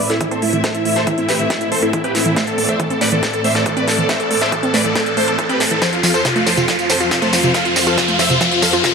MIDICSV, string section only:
0, 0, Header, 1, 2, 480
1, 0, Start_track
1, 0, Key_signature, 0, "minor"
1, 0, Tempo, 431655
1, 709, Time_signature, 4, 2, 24, 8
1, 9945, End_track
2, 0, Start_track
2, 0, Title_t, "String section"
2, 0, Program_c, 0, 48
2, 0, Note_on_c, 0, 45, 80
2, 0, Note_on_c, 0, 52, 74
2, 0, Note_on_c, 0, 60, 74
2, 0, Note_on_c, 0, 69, 73
2, 0, Note_on_c, 0, 76, 84
2, 2591, Note_off_c, 0, 76, 0
2, 2628, Note_on_c, 0, 74, 84
2, 6425, Note_off_c, 0, 45, 0
2, 6425, Note_off_c, 0, 52, 0
2, 6425, Note_off_c, 0, 60, 0
2, 6430, Note_off_c, 0, 74, 0
2, 6469, Note_on_c, 0, 41, 82
2, 6469, Note_on_c, 0, 60, 74
2, 6470, Note_on_c, 0, 53, 74
2, 6470, Note_on_c, 0, 72, 88
2, 9945, Note_off_c, 0, 41, 0
2, 9945, Note_off_c, 0, 53, 0
2, 9945, Note_off_c, 0, 60, 0
2, 9945, Note_off_c, 0, 69, 0
2, 9945, Note_off_c, 0, 72, 0
2, 9945, End_track
0, 0, End_of_file